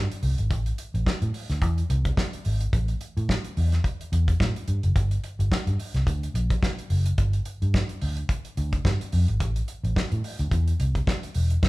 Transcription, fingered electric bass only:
0.23 0.34 C2 loud
0.39 0.51 G#1 loud
0.51 0.71 A1 loud
0.94 1.03 A1 medium
1.07 muted fingered electric bass stroke medium
1.22 1.31 A2 loud
1.50 1.62 D2 medium
1.62 1.82 E2 medium
1.90 2.10 C2 loud
2.46 2.66 G#1 loud
2.73 2.93 A1 medium
3.17 3.37 A2 medium
3.57 3.77 E2 medium
4.12 4.32 E2 loud
4.40 4.52 A2 loud
4.68 4.79 G2 medium
4.84 4.92 F#1 medium
4.96 5.16 G1 loud
5.39 5.48 G1 loud
5.67 5.76 G2 loud
5.94 6.03 C2 medium
6.07 6.27 D2 loud
6.34 6.55 A#1 medium
6.90 7.10 F#1 loud
7.18 7.39 G1 loud
7.62 7.82 G2 medium
8.02 8.22 D2 medium
8.57 8.78 D2 loud
8.85 8.96 G2 loud
9.13 9.24 F2 medium
9.29 9.41 G#1 medium
9.41 9.61 A1 loud
9.84 9.93 A1 medium
10.12 10.21 A2 loud
10.39 10.48 D2 loud
10.52 10.72 E2 medium
10.80 11.00 C2 medium
11.35 11.56 E1 medium
11.63 11.69 F1 medium

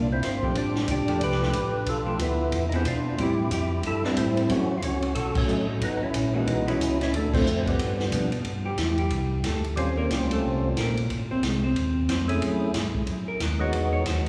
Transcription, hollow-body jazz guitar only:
0.43 0.54 F3 medium
0.43 0.55 A3 medium
0.43 0.54 D4 medium
0.43 0.55 G4 medium
1.08 1.39 F3 medium
1.08 1.39 A3 medium
1.08 1.39 D4 medium
1.08 1.40 G4 medium
1.41 1.52 F3 medium
1.41 1.53 A3 medium
1.41 1.53 D4 medium
1.41 1.53 G4 medium
2.06 2.18 F3 medium
2.06 2.18 A3 medium
2.06 2.18 D4 medium
2.73 2.84 E3 medium
2.73 2.84 B3 medium
2.73 2.84 D4 medium
2.73 2.84 G#4 medium
3.19 3.37 G3 medium
3.19 3.37 C4 medium
3.19 3.37 E4 medium
4.04 4.47 G3 medium
4.04 4.48 C4 medium
4.04 4.48 E4 medium
4.50 4.68 E3 medium
4.50 4.69 A3 medium
4.50 4.69 C#4 medium
5.47 5.66 F#3 medium
5.47 5.67 A3 medium
5.47 5.67 D#4 medium
6.34 6.65 E3 medium
6.34 6.65 G#3 medium
6.34 6.65 D#4 medium
6.34 6.66 F#4 medium
6.67 6.78 E3 medium
6.67 6.79 G#3 medium
6.67 6.79 D#4 medium
6.67 6.79 F#4 medium
7.33 7.45 D3 medium
7.33 7.45 A3 medium
7.33 7.45 C4 medium
7.33 7.45 F4 medium
8.12 8.30 F3 medium
8.12 8.31 B3 medium
8.12 8.31 D4 medium
8.65 8.78 G3 medium
8.65 8.78 G4 medium
8.79 8.99 E3 soft
8.79 8.98 E4 medium
8.99 9.42 G3 medium
8.99 9.41 G4 medium
9.46 9.65 A3 medium
9.46 9.65 A4 medium
9.97 10.10 A#3 medium
9.97 10.10 A#4 medium
10.13 10.32 G3 medium
10.13 10.31 G4 medium
10.32 10.74 A3 medium
10.32 10.74 A4 medium
10.78 10.97 A#3 medium
10.78 10.97 A#4 medium
11.31 11.43 C4 medium
11.31 11.43 C5 loud
11.45 11.64 G#3 soft
11.45 11.64 G#4 soft
11.64 12.06 C4 medium
11.64 12.06 C5 medium
12.09 12.22 C4 medium
12.09 12.21 C5 medium
13.28 13.42 A#4 medium
13.42 13.61 B4 medium
13.61 13.74 C#5 medium
13.74 13.92 D#5 medium
13.93 14.05 C#5 medium
14.06 14.26 C5 medium
14.26 14.29 B4 medium

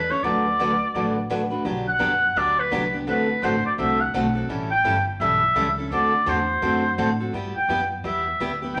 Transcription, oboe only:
0.00 0.12 B4 medium
0.11 0.25 C#5 medium
0.23 1.30 D5 medium
1.88 2.39 F#5 loud
2.38 2.61 D5 medium
2.59 2.94 B4 medium
3.09 3.46 B4 medium
3.44 3.65 C5 medium
3.66 3.72 D5 medium
3.80 4.02 E5 medium
4.01 4.36 F#5 medium
4.71 5.04 G5 loud
5.21 5.73 E5 loud
5.93 6.30 D5 medium
6.28 7.20 C5 medium
7.57 7.89 G5 medium
8.07 8.58 E5 medium
8.75 8.80 G5 loud

